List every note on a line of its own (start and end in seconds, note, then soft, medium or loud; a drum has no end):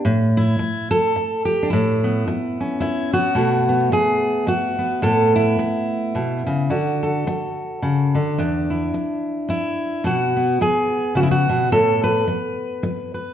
0.05 0.59 A2 medium
0.37 0.90 E4 medium
0.59 muted steel-string acoustic guitar stroke medium
0.91 1.45 A4 loud
1.16 muted steel-string acoustic guitar stroke medium
1.45 1.69 G4 medium
1.63 1.69 D4 medium
1.70 2.26 A2 medium
1.70 2.79 E4 medium
2.04 3.13 B3 medium
2.27 muted steel-string acoustic guitar stroke medium
2.60 3.35 C#4 soft
2.80 3.13 E4 medium
2.80 muted steel-string acoustic guitar stroke medium
3.13 3.34 B3 soft
3.13 3.93 F#4 medium
3.35 3.91 B2 medium
3.35 6.18 A3 soft
3.69 4.77 B3 soft
3.92 4.48 G#4 medium
3.92 muted steel-string acoustic guitar stroke medium
4.47 5.03 F#4 medium
4.47 muted steel-string acoustic guitar stroke medium
4.79 6.70 B3 soft
5.02 5.58 A2 medium
5.02 5.35 A4 loud
5.36 6.71 E4 medium
5.59 muted steel-string acoustic guitar stroke medium
6.15 6.46 B2 medium
6.47 6.70 C#3 medium
6.70 7.26 D3 medium
6.70 8.35 F#4 medium
7.03 8.35 A4 medium
7.27 muted steel-string acoustic guitar stroke medium
7.82 8.14 C#3 medium
8.15 8.38 D3 medium
8.38 8.93 E2 medium
8.38 10.02 D4 medium
8.70 9.48 E4 soft
8.94 muted steel-string acoustic guitar stroke medium
9.49 10.05 E4 medium
9.49 muted steel-string acoustic guitar stroke medium
10.04 10.60 B2 medium
10.04 10.61 F#4 medium
10.37 13.34 B3 soft
10.61 11.16 G#4 medium
10.61 muted steel-string acoustic guitar stroke medium
11.15 11.47 C#3 medium
11.15 11.22 F#4 loud
11.23 11.31 E4 medium
11.31 11.71 F#4 medium
11.49 11.72 B2 medium
11.72 12.26 A2 medium
11.72 12.03 A4 loud
12.04 13.13 B4 loud
12.28 muted steel-string acoustic guitar stroke medium
12.83 muted steel-string acoustic guitar stroke medium
13.14 13.34 B4 soft